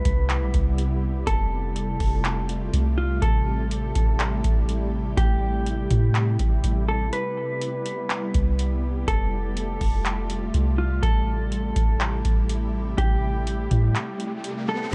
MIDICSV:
0, 0, Header, 1, 7, 480
1, 0, Start_track
1, 0, Key_signature, 0, "minor"
1, 0, Tempo, 487805
1, 1253, Time_signature, 4, 2, 24, 8
1, 14710, End_track
2, 0, Start_track
2, 0, Title_t, "Clean electric guitar"
2, 0, Program_c, 0, 27
2, 0, Note_on_c, 0, 71, 98
2, 1213, Note_off_c, 0, 71, 0
2, 1249, Note_on_c, 0, 69, 103
2, 2891, Note_off_c, 0, 69, 0
2, 2929, Note_on_c, 0, 65, 73
2, 3158, Note_off_c, 0, 65, 0
2, 3168, Note_on_c, 0, 69, 109
2, 5051, Note_off_c, 0, 69, 0
2, 5091, Note_on_c, 0, 67, 97
2, 6732, Note_off_c, 0, 67, 0
2, 6775, Note_on_c, 0, 69, 77
2, 7002, Note_off_c, 0, 69, 0
2, 7014, Note_on_c, 0, 71, 101
2, 8894, Note_off_c, 0, 71, 0
2, 8933, Note_on_c, 0, 69, 102
2, 10573, Note_off_c, 0, 69, 0
2, 10610, Note_on_c, 0, 65, 74
2, 10839, Note_off_c, 0, 65, 0
2, 10850, Note_on_c, 0, 69, 108
2, 12732, Note_off_c, 0, 69, 0
2, 12772, Note_on_c, 0, 67, 98
2, 14413, Note_off_c, 0, 67, 0
2, 14453, Note_on_c, 0, 69, 81
2, 14681, Note_off_c, 0, 69, 0
2, 14710, End_track
3, 0, Start_track
3, 0, Title_t, "Ambient pad"
3, 0, Program_c, 1, 92
3, 0, Note_on_c, 1, 48, 82
3, 0, Note_on_c, 1, 55, 73
3, 0, Note_on_c, 1, 59, 72
3, 0, Note_on_c, 1, 64, 74
3, 0, Note_on_c, 1, 67, 86
3, 1232, Note_off_c, 1, 55, 0
3, 1233, Note_off_c, 1, 59, 0
3, 1233, Note_off_c, 1, 64, 0
3, 1233, Note_off_c, 1, 67, 0
3, 1248, Note_on_c, 1, 65, 74
3, 1250, Note_on_c, 1, 55, 73
3, 1250, Note_on_c, 1, 57, 72
3, 1250, Note_on_c, 1, 67, 93
3, 3151, Note_off_c, 1, 65, 0
3, 3152, Note_off_c, 1, 55, 0
3, 3152, Note_off_c, 1, 57, 0
3, 3171, Note_on_c, 1, 64, 75
3, 3172, Note_on_c, 1, 57, 75
3, 3173, Note_on_c, 1, 55, 78
3, 6972, Note_off_c, 1, 67, 0
3, 6974, Note_off_c, 1, 57, 0
3, 7009, Note_on_c, 1, 59, 76
3, 7011, Note_on_c, 1, 67, 90
3, 8892, Note_off_c, 1, 64, 0
3, 8912, Note_off_c, 1, 59, 0
3, 8930, Note_on_c, 1, 65, 73
3, 8931, Note_on_c, 1, 57, 76
3, 10812, Note_off_c, 1, 48, 0
3, 10813, Note_off_c, 1, 67, 0
3, 10832, Note_off_c, 1, 57, 0
3, 10832, Note_off_c, 1, 65, 0
3, 10851, Note_on_c, 1, 48, 82
3, 10851, Note_on_c, 1, 57, 75
3, 10851, Note_on_c, 1, 67, 86
3, 10852, Note_on_c, 1, 64, 72
3, 14653, Note_off_c, 1, 48, 0
3, 14653, Note_off_c, 1, 55, 0
3, 14653, Note_off_c, 1, 57, 0
3, 14653, Note_off_c, 1, 67, 0
3, 14654, Note_off_c, 1, 64, 0
3, 14710, End_track
4, 0, Start_track
4, 0, Title_t, "808-style bass"
4, 0, Program_c, 2, 38
4, 53, Note_on_c, 2, 36, 108
4, 411, Note_on_c, 2, 35, 101
4, 426, Note_off_c, 2, 36, 0
4, 526, Note_off_c, 2, 35, 0
4, 535, Note_on_c, 2, 36, 104
4, 1225, Note_off_c, 2, 36, 0
4, 1251, Note_on_c, 2, 29, 111
4, 1943, Note_off_c, 2, 29, 0
4, 1971, Note_on_c, 2, 29, 109
4, 2663, Note_off_c, 2, 29, 0
4, 2690, Note_on_c, 2, 36, 109
4, 3152, Note_off_c, 2, 36, 0
4, 3172, Note_on_c, 2, 33, 112
4, 3863, Note_off_c, 2, 33, 0
4, 3893, Note_on_c, 2, 33, 108
4, 4354, Note_off_c, 2, 33, 0
4, 4375, Note_on_c, 2, 33, 104
4, 5065, Note_off_c, 2, 33, 0
4, 5092, Note_on_c, 2, 33, 111
4, 5783, Note_off_c, 2, 33, 0
4, 5813, Note_on_c, 2, 45, 107
4, 6274, Note_off_c, 2, 45, 0
4, 6295, Note_on_c, 2, 33, 102
4, 6524, Note_off_c, 2, 33, 0
4, 6533, Note_on_c, 2, 33, 114
4, 6993, Note_off_c, 2, 33, 0
4, 8215, Note_on_c, 2, 36, 102
4, 8905, Note_off_c, 2, 36, 0
4, 8933, Note_on_c, 2, 29, 109
4, 9624, Note_off_c, 2, 29, 0
4, 9654, Note_on_c, 2, 29, 105
4, 10345, Note_off_c, 2, 29, 0
4, 10374, Note_on_c, 2, 36, 113
4, 10834, Note_off_c, 2, 36, 0
4, 10853, Note_on_c, 2, 33, 112
4, 11544, Note_off_c, 2, 33, 0
4, 11574, Note_on_c, 2, 33, 104
4, 12034, Note_off_c, 2, 33, 0
4, 12056, Note_on_c, 2, 33, 107
4, 12745, Note_off_c, 2, 33, 0
4, 12774, Note_on_c, 2, 33, 107
4, 13465, Note_off_c, 2, 33, 0
4, 13494, Note_on_c, 2, 45, 104
4, 13723, Note_off_c, 2, 45, 0
4, 14710, End_track
5, 0, Start_track
5, 0, Title_t, "Impact"
5, 0, Program_c, 3, 103
5, 0, Note_on_c, 3, 60, 80
5, 1252, Note_off_c, 3, 60, 0
5, 14710, End_track
6, 0, Start_track
6, 0, Title_t, "Riser"
6, 0, Program_c, 4, 103
6, 12774, Note_on_c, 4, 60, 80
6, 14693, Note_off_c, 4, 60, 0
6, 14710, End_track
7, 0, Start_track
7, 0, Title_t, "Drums"
7, 51, Note_on_c, 9, 42, 84
7, 52, Note_on_c, 9, 36, 90
7, 149, Note_off_c, 9, 42, 0
7, 151, Note_off_c, 9, 36, 0
7, 292, Note_on_c, 9, 39, 117
7, 292, Note_on_c, 9, 42, 70
7, 390, Note_off_c, 9, 39, 0
7, 390, Note_off_c, 9, 42, 0
7, 530, Note_on_c, 9, 42, 69
7, 534, Note_on_c, 9, 36, 88
7, 629, Note_off_c, 9, 42, 0
7, 632, Note_off_c, 9, 36, 0
7, 771, Note_on_c, 9, 42, 76
7, 869, Note_off_c, 9, 42, 0
7, 1251, Note_on_c, 9, 36, 112
7, 1251, Note_on_c, 9, 42, 74
7, 1349, Note_off_c, 9, 42, 0
7, 1350, Note_off_c, 9, 36, 0
7, 1731, Note_on_c, 9, 42, 74
7, 1830, Note_off_c, 9, 42, 0
7, 1970, Note_on_c, 9, 46, 65
7, 1972, Note_on_c, 9, 36, 91
7, 2068, Note_off_c, 9, 46, 0
7, 2071, Note_off_c, 9, 36, 0
7, 2211, Note_on_c, 9, 39, 115
7, 2211, Note_on_c, 9, 42, 69
7, 2310, Note_off_c, 9, 39, 0
7, 2310, Note_off_c, 9, 42, 0
7, 2451, Note_on_c, 9, 42, 70
7, 2549, Note_off_c, 9, 42, 0
7, 2692, Note_on_c, 9, 42, 79
7, 2790, Note_off_c, 9, 42, 0
7, 3171, Note_on_c, 9, 42, 71
7, 3172, Note_on_c, 9, 36, 110
7, 3270, Note_off_c, 9, 42, 0
7, 3271, Note_off_c, 9, 36, 0
7, 3653, Note_on_c, 9, 42, 73
7, 3751, Note_off_c, 9, 42, 0
7, 3891, Note_on_c, 9, 42, 83
7, 3893, Note_on_c, 9, 36, 88
7, 3989, Note_off_c, 9, 42, 0
7, 3991, Note_off_c, 9, 36, 0
7, 4131, Note_on_c, 9, 39, 113
7, 4131, Note_on_c, 9, 42, 70
7, 4230, Note_off_c, 9, 39, 0
7, 4230, Note_off_c, 9, 42, 0
7, 4372, Note_on_c, 9, 42, 69
7, 4375, Note_on_c, 9, 36, 88
7, 4470, Note_off_c, 9, 42, 0
7, 4473, Note_off_c, 9, 36, 0
7, 4613, Note_on_c, 9, 42, 78
7, 4711, Note_off_c, 9, 42, 0
7, 5093, Note_on_c, 9, 36, 116
7, 5093, Note_on_c, 9, 42, 74
7, 5191, Note_off_c, 9, 36, 0
7, 5191, Note_off_c, 9, 42, 0
7, 5574, Note_on_c, 9, 42, 72
7, 5672, Note_off_c, 9, 42, 0
7, 5811, Note_on_c, 9, 42, 81
7, 5813, Note_on_c, 9, 36, 87
7, 5909, Note_off_c, 9, 42, 0
7, 5911, Note_off_c, 9, 36, 0
7, 6052, Note_on_c, 9, 39, 116
7, 6052, Note_on_c, 9, 42, 70
7, 6150, Note_off_c, 9, 39, 0
7, 6150, Note_off_c, 9, 42, 0
7, 6291, Note_on_c, 9, 42, 72
7, 6294, Note_on_c, 9, 36, 89
7, 6389, Note_off_c, 9, 42, 0
7, 6393, Note_off_c, 9, 36, 0
7, 6532, Note_on_c, 9, 42, 81
7, 6630, Note_off_c, 9, 42, 0
7, 7013, Note_on_c, 9, 42, 74
7, 7112, Note_off_c, 9, 42, 0
7, 7493, Note_on_c, 9, 42, 71
7, 7591, Note_off_c, 9, 42, 0
7, 7731, Note_on_c, 9, 42, 83
7, 7829, Note_off_c, 9, 42, 0
7, 7971, Note_on_c, 9, 42, 69
7, 7972, Note_on_c, 9, 39, 118
7, 8070, Note_off_c, 9, 39, 0
7, 8070, Note_off_c, 9, 42, 0
7, 8210, Note_on_c, 9, 42, 70
7, 8214, Note_on_c, 9, 36, 89
7, 8309, Note_off_c, 9, 42, 0
7, 8313, Note_off_c, 9, 36, 0
7, 8453, Note_on_c, 9, 42, 80
7, 8551, Note_off_c, 9, 42, 0
7, 8934, Note_on_c, 9, 36, 110
7, 8934, Note_on_c, 9, 42, 73
7, 9032, Note_off_c, 9, 36, 0
7, 9032, Note_off_c, 9, 42, 0
7, 9414, Note_on_c, 9, 42, 72
7, 9513, Note_off_c, 9, 42, 0
7, 9653, Note_on_c, 9, 46, 65
7, 9655, Note_on_c, 9, 36, 91
7, 9752, Note_off_c, 9, 46, 0
7, 9753, Note_off_c, 9, 36, 0
7, 9894, Note_on_c, 9, 42, 68
7, 9895, Note_on_c, 9, 39, 115
7, 9993, Note_off_c, 9, 39, 0
7, 9993, Note_off_c, 9, 42, 0
7, 10132, Note_on_c, 9, 42, 70
7, 10231, Note_off_c, 9, 42, 0
7, 10373, Note_on_c, 9, 42, 76
7, 10471, Note_off_c, 9, 42, 0
7, 10854, Note_on_c, 9, 36, 116
7, 10854, Note_on_c, 9, 42, 69
7, 10952, Note_off_c, 9, 36, 0
7, 10953, Note_off_c, 9, 42, 0
7, 11335, Note_on_c, 9, 42, 72
7, 11433, Note_off_c, 9, 42, 0
7, 11573, Note_on_c, 9, 42, 81
7, 11575, Note_on_c, 9, 36, 91
7, 11671, Note_off_c, 9, 42, 0
7, 11673, Note_off_c, 9, 36, 0
7, 11814, Note_on_c, 9, 42, 68
7, 11815, Note_on_c, 9, 39, 119
7, 11913, Note_off_c, 9, 39, 0
7, 11913, Note_off_c, 9, 42, 0
7, 12053, Note_on_c, 9, 42, 70
7, 12056, Note_on_c, 9, 36, 88
7, 12151, Note_off_c, 9, 42, 0
7, 12154, Note_off_c, 9, 36, 0
7, 12294, Note_on_c, 9, 42, 82
7, 12393, Note_off_c, 9, 42, 0
7, 12774, Note_on_c, 9, 36, 117
7, 12774, Note_on_c, 9, 42, 70
7, 12872, Note_off_c, 9, 36, 0
7, 12872, Note_off_c, 9, 42, 0
7, 13254, Note_on_c, 9, 42, 70
7, 13353, Note_off_c, 9, 42, 0
7, 13491, Note_on_c, 9, 42, 80
7, 13494, Note_on_c, 9, 36, 89
7, 13589, Note_off_c, 9, 42, 0
7, 13592, Note_off_c, 9, 36, 0
7, 13732, Note_on_c, 9, 39, 115
7, 13732, Note_on_c, 9, 42, 70
7, 13830, Note_off_c, 9, 39, 0
7, 13830, Note_off_c, 9, 42, 0
7, 13971, Note_on_c, 9, 42, 68
7, 14069, Note_off_c, 9, 42, 0
7, 14210, Note_on_c, 9, 42, 80
7, 14309, Note_off_c, 9, 42, 0
7, 14710, End_track
0, 0, End_of_file